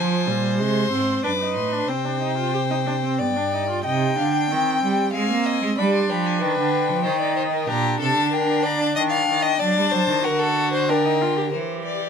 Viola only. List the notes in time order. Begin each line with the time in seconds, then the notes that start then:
Already playing: F3
0.27 G3
0.59 G#3
0.91 C4
1.24 D4
1.40 D#4
1.72 D4
1.89 C4
2.05 D4
2.21 D#4
2.38 F4
2.54 G4
2.71 D#4
2.86 D4
3.04 C4
3.20 B3
3.37 D4
3.53 D#4
3.70 F4
3.85 D#4
4.19 D4
4.51 C4
5.15 C4
5.78 D4
7.05 D#4
7.69 D4
9.60 D4
10.24 F#4
10.89 D4
11.05 D#4
11.21 F4
11.37 G4
11.53 G4